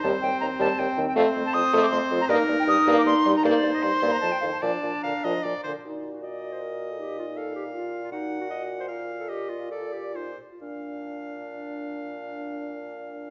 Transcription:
<<
  \new Staff \with { instrumentName = "Flute" } { \time 3/4 \key bes \major \tempo 4 = 156 a''8 g''8 bes''8 a''8 g''8. g''16 | f''8. a''16 ees'''8. d'''16 c'''8. bes''16 | ees''8. g''16 ees'''8. d'''16 c'''8. bes''16 | d''8. ees''16 c'''8. bes''16 a''16 g''16 f''16 a''16 |
a''4 bes''4. r8 | r2. | r2. | r2. |
r2. | r2. | r2. | }
  \new Staff \with { instrumentName = "Oboe" } { \time 3/4 \key bes \major c''2. | c''2. | bes'2~ bes'8 r8 | c''2. |
d''4 f''8 ees''8 d''8 c''8 | r4 ees''2~ | ees''4 f''2 | ges''2 f''4 |
ees''4 d''4 c''8 r8 | f''2.~ | f''2. | }
  \new Staff \with { instrumentName = "Clarinet" } { \time 3/4 \key bes \major c'2.~ | c'2. | ees'2.~ | ees'2~ ees'8 r8 |
d'2~ d'8 r8 | ees'8. ges'16 d''8. c''16 bes'8. a'16 | g'8 f'8 a'8 g'8 f'8. f'16 | ees'8. ges'16 ees''8. c''16 bes'8. a'16 |
g'8 f'8 a'8 g'8 f'8. f'16 | d'2.~ | d'2. | }
  \new Staff \with { instrumentName = "French horn" } { \clef bass \time 3/4 \key bes \major g8 g8 ees8 g8 g8 ees8 | a8 a8 f8 a8 a8 f8 | bes8 bes8 g8 bes8 bes8 g8 | bes8 bes8 g8 bes8 f8 ees8 |
f8 f8 d8 f8 f8 d8 | ges'2. | ees'2 f'4 | ges'4 ges'4 f'4~ |
f'2 ees'8 r8 | d'2.~ | d'2. | }
  \new Staff \with { instrumentName = "Bassoon" } { \clef bass \time 3/4 \key bes \major ees,8 ees,8 ees,8 ees,8 ees,8 ees,8 | f,8 f,8 f,8 f,8 f,8 f,8 | g,8 g,8 g,8 g,8 g,8 g,8 | g,8 g,8 g,8 g,8 f,8 f,8 |
bes,8 bes,8 bes,8 bes,8 bes,8 bes,8 | bes,2.~ | bes,2. | bes,2.~ |
bes,2~ bes,8 r8 | bes,2.~ | bes,2. | }
>>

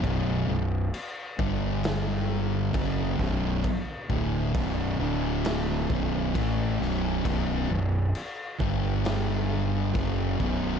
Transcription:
<<
  \new Staff \with { instrumentName = "Distorted electric guitar" } { \clef bass \time 4/4 \key b \minor \tempo 4 = 67 <b,, fis, b,>8 <b,, fis,>8 r8 <g, d g>4. <fis, cis fis>8 <b,, fis, b,>8 | r8 <d, a, d>8 <b,, fis, b,>8 <d, a, d>4 <b,, fis, b,>8 <a, e a>8 <b,, fis, b,>8 | <b,, fis, b,>8 <b,, fis,>8 r8 <g, d g>4. <fis, cis fis>8 <b,, fis, b,>8 | }
  \new Staff \with { instrumentName = "Distorted electric guitar" } { \clef bass \time 4/4 \key b \minor <b,, fis, b,>8 <b,, fis,>8 r8 <g, d g>4. <fis, cis fis>8 <b,, fis, b,>8 | r8 <d, a, d>8 <b,, fis, b,>8 <d, a, d>4 <b,, fis, b,>8 <a, e a>8 <b,, fis, b,>8 | <b,, fis, b,>8 <b,, fis,>8 r8 <g, d g>4. <fis, cis fis>8 <b,, fis, b,>8 | }
  \new Staff \with { instrumentName = "Fingered electric bass" } { \clef bass \time 4/4 \key b \minor b,,,8 b,,,8 r8 g,,4. fis,,8 b,,,8 | r8 d,,8 b,,,8 d,,4 b,,,8 a,,8 b,,,8 | b,,,8 b,,,8 r8 g,,4. fis,,8 b,,,8 | }
  \new DrumStaff \with { instrumentName = "Drums" } \drummode { \time 4/4 <cymc bd>4 cymc8 bd8 <cymc sn>4 <cymc bd>8 <bd sn>8 | <cymc bd>8 bd8 <cymc bd>4 <cymc sn>8 bd8 <cymc bd>8 sn8 | <cymc bd>4 cymc8 bd8 <cymc sn>4 <cymc bd>8 bd8 | }
>>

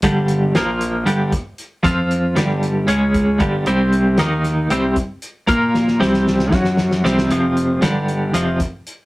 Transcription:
<<
  \new Staff \with { instrumentName = "Clean electric guitar" } { \clef bass \time 7/8 \key c \major \tempo 4 = 116 <g, d g>4 <bes, f bes>4 <g, d g>8 r4 | <f c' f'>4 <g, d g>4 <cis gis cis'>4 <g, d g>8 | <c g c'>4 <ees bes ees'>4 <c g c'>8 r4 | <bes f' bes'>4 <c g c'>4 <fis cis' fis'>4 <c g c'>8 |
<f, c f>4 <g, d g>4 <f, c f>8 r4 | }
  \new Staff \with { instrumentName = "Fingered electric bass" } { \clef bass \time 7/8 \key c \major g,,4 bes,,4 g,,8 r4 | f,4 g,,4 cis,4 g,,8 | c,4 ees,4 c,8 r4 | bes,4 c,4 fis,4 c,8 |
f,,4 g,,4 f,,8 r4 | }
  \new DrumStaff \with { instrumentName = "Drums" } \drummode { \time 7/8 <hh bd>8 hh8 <hh sn>8 hh8 hh8 <hh bd>8 hh8 | <hh bd>8 hh8 <hh sn>8 hh8 hh8 <hh bd>8 <hh bd>8 | hh8 hh8 <hh sn>8 <hh sn>8 hh8 <hh bd>8 hh8 | <hh bd>8 sn16 sn16 sn16 sn16 sn16 sn16 <bd sn>16 sn16 sn16 sn16 sn16 sn16 |
hh8 hh8 <hh sn>8 hh8 hh8 <hh bd>8 hh8 | }
>>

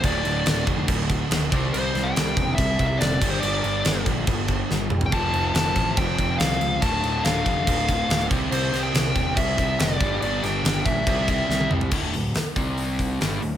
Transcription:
<<
  \new Staff \with { instrumentName = "Lead electric guitar" } { \time 4/4 \key c \mixolydian \tempo 4 = 141 d''4. r2 r8 | c''8. g''4~ g''16 e''8. e''16 d''8. c''16 | d''4. r4. \tuplet 3/2 { r4 r16 g''16 } | a''4 a''4 g''4 f''4 |
a''4 f''8 f''2 r8 | c''8. g''4~ g''16 e''8. e''16 d''4 | d''8 g''4 e''4 e''4 r8 | r1 | }
  \new Staff \with { instrumentName = "Overdriven electric guitar" } { \clef bass \time 4/4 \key c \mixolydian <d, a, d>2.~ <d, a, d>8 <c g c'>8~ | <c g c'>2.~ <c g c'>8 <g, d g>8~ | <g, d g>2.~ <g, d g>8 r8 | <f, c f>1 |
<d, a, d>2.~ <d, a, d>8 <c g c'>8~ | <c g c'>2.~ <c g c'>8 <g, d g>8~ | <g, d g>2 <c g c'>2 | <d, a, d>8 <d, a,>8 r8 <c g c'>4. <g, d g>8 <d, a,>8 | }
  \new Staff \with { instrumentName = "Picked electric bass" } { \clef bass \time 4/4 \key c \mixolydian d,,8 d,,8 d,,8 f,,8 d,,4 d,,8 c,8 | c,8 c,8 c,8 e,,8 c,8 c,8 f,,8 g,,8 | g,,8 g,,8 g,,8 bes,,8 g,,4 g,,8 e,,8 | f,,8 f,,8 f,,8 a,,8 f,,8 f,,8 c,8 cis,8 |
d,,8 d,,8 d,,8 f,,8 d,,4 d,,8 c,8 | c,8 c,8 c,8 e,,8 c,8 c,8 f,,8 g,,8 | g,,8 g,,8 g,,8 bes,,8 c,4 c,8 c,8 | d,,8 d,,8 r8 c,4. g,,8 d,,8 | }
  \new DrumStaff \with { instrumentName = "Drums" } \drummode { \time 4/4 <cymc bd>8 cymc8 <cymc sn>8 <cymc bd>8 <cymc bd>8 <cymc bd>8 <cymc sn>8 <cymc bd>8 | cymc8 <cymc sn>8 <cymc sn>8 <cymc bd>8 <cymc bd>8 <cymc bd>8 <cymc sn>8 <cymc bd>8 | cymc8 cymc8 <cymc sn>8 <cymc bd>8 <cymc bd>8 <cymc bd>8 sn8 toml16 tomfh16 | <cymc bd>8 cymc8 <cymc sn>8 <cymc bd>8 <cymc bd>8 <cymc bd>8 <cymc sn>8 cymc8 |
<cymc bd>8 cymc8 <cymc sn>8 <cymc bd>8 <cymc bd>8 <cymc bd>8 <cymc sn>8 <cymc bd>8 | cymc8 <cymc sn>8 <cymc sn>8 <cymc bd>8 <cymc bd>8 <cymc bd>8 <cymc sn>8 <cymc bd>8 | cymc8 <cymc sn>8 <cymc sn>8 <cymc bd>8 <cymc bd>8 <cymc bd>8 sn16 tommh16 toml16 tomfh16 | <cymc bd>8 hho8 <hho sn>8 <hho bd>8 hho8 <hho bd>8 <hho sn>8 hho8 | }
>>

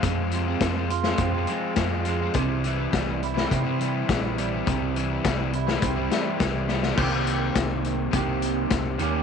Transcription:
<<
  \new Staff \with { instrumentName = "Overdriven electric guitar" } { \time 4/4 \key c \phrygian \tempo 4 = 104 <f aes c' f'>8 <f aes c' f'>16 <aes c' f'>16 <f aes c' f'>16 <aes c' f'>8 <aes c' f'>8 <aes c' f'>16 <f aes c' f'>8 <f aes c' f'>8 <f aes c' f'>16 <aes c' f'>16 | <c e g c' e'>8 <e g c' e'>16 <g c' e'>16 <c e g c' e'>16 <g c' e'>8 <g c' e'>8 <g c' e'>16 <e g c' e'>8 <c e g c' e'>8 <e g c' e'>16 <g c' e'>16 | <c e g c' e'>8 <e g c' e'>16 <g c' e'>16 <c e g c' e'>16 <g c' e'>8 <g c' e'>8 <g c' e'>16 <e g c' e'>8 <c e g c' e'>8 <e g c' e'>16 <g c' e'>16 | <c ees g c' g'>2 <c ees g c' g'>4. <ees bes des' g'>8 | }
  \new Staff \with { instrumentName = "Clean electric guitar" } { \clef bass \time 4/4 \key c \phrygian <f, f aes c'>8 c8 aes8 f'8 c'8 aes8 f8 aes8 | c8 e8 g8 e'8 c'8 g8 e8 g8 | c8 e8 g8 e'8 c'8 g8 e8 g8 | <c ees bes c' g'>2 <c ees bes c' g'>4. <ees bes des' g'>8 | }
  \new Staff \with { instrumentName = "Picked electric bass" } { \clef bass \time 4/4 \key c \phrygian f,4 f,4 f,8 r8 f,4 | c,4 c,4 c4 bes,,4 | c,4 c,4 c,8 r8 c,4 | c,4 c,4 c,4 c,8 ees,8 | }
  \new DrumStaff \with { instrumentName = "Drums" } \drummode { \time 4/4 <hh bd>8 hh8 <hh bd sn>8 hh16 sn16 <hh bd>8 hh8 <hh bd sn>8 hh8 | <hh bd>8 hh8 <hh bd sn>8 hh16 sn16 <hh bd>8 hh8 <hh bd sn>8 hh8 | <hh bd>8 hh8 <hh bd sn>8 hh16 sn16 <hh bd>8 <hh sn>8 <hh bd sn>8 sn16 sn16 | <cymc bd>8 hh8 <hh bd sn>8 hh8 <hh bd>8 hh8 <hh bd sn>8 hh8 | }
>>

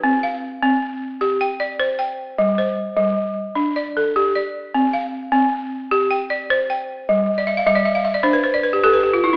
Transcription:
\new Staff \with { instrumentName = "Balafon" } { \time 12/8 \key c \major \tempo 4. = 102 << { b'8 f''4. r4. g''8 d''4 g''4~ | g''8 c''4. r4. d''8 a'4 d''4~ | d''8 f''4. r4. g''8 d''4 g''4~ | g''8 r16 d''16 e''16 f''16 e''16 d''16 e''16 f''16 e''16 d''16 c''16 b'16 c''16 d''16 b'16 g'16 a'16 b'16 g'16 f'16 e'16 d'16 | } \\ { c'4 r8 c'4 r8 g'4 r8 c''4 r8 | g4 r8 g4 r8 d'4 r8 g'4 r8 | c'4 r8 c'4 r8 g'4 r8 c''4 r8 | g4 r8 g4 r8 d'4 r8 g'4 r8 | } >> }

